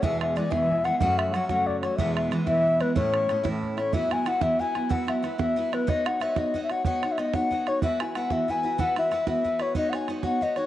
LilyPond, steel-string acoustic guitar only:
\new Staff \with { instrumentName = "Steel-string acoustic guitar" } { \time 6/8 \key a \major \tempo 4. = 123 <e, b, e gis b gis'>4 <e gis b gis'>8 <e, b, e gis b gis'>4 <e gis b gis'>8 | <fis, cis fis a cis' fis'>4 <fis a cis' fis'>8 <fis, cis fis a cis' fis'>4 <fis a cis' fis'>8 | <e, b, e gis b e'>4 <e gis b e'>8 <e, b, e gis b e'>4 <e gis b e'>8 | <a, e a cis' e'>4 <e a cis' e'>8 <a, e a cis' e'>4 <a cis' e'>8 |
\key e \major <e, e fis b e' fis'>8 <fis b e' fis'>8 <fis b e' fis'>8 <e, e fis b e' fis'>8 <fis b e' fis'>8 <fis b e' fis'>8 | <e, e fis b e' fis'>8 <fis b e' fis'>8 <fis b e' fis'>8 <e, e fis b e' fis'>8 <fis b e' fis'>8 <fis b e' fis'>8 | <b dis' fis' cis''>8 <dis' fis' cis''>8 <b dis' fis' cis''>8 <b dis' fis' cis''>8 <b dis' fis' cis''>8 <dis' fis' cis''>8 | <b dis' fis' cis''>8 <dis' fis' cis''>8 <b dis' fis' cis''>8 <b dis' fis' cis''>8 <b dis' fis' cis''>8 <dis' fis' cis''>8 |
<e b e' fis' b'>8 <e' fis' b'>8 <b e' fis' b'>8 <e b e' fis' b'>8 <b e' fis' b'>8 <e' fis' b'>8 | <e b e' fis' b'>8 <e' fis' b'>8 <b e' fis' b'>8 <e b e' fis' b'>8 <b e' fis' b'>8 <e' fis' b'>8 | <b dis' fis' cis''>8 <dis' fis' cis''>8 <b dis' fis' cis''>8 <b dis' fis' cis''>8 <b dis' fis' cis''>8 <dis' fis' cis''>8 | }